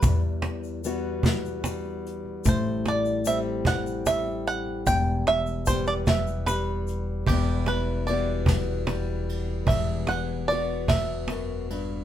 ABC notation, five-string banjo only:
X:1
M:6/8
L:1/16
Q:3/8=50
K:Em
V:1 name="Five-string banjo"
B z8 z3 | c2 d2 e2 f2 e2 f2 | g2 e2 c d e2 B4 | G2 B2 d8 |
e2 f2 d2 e4 z2 |]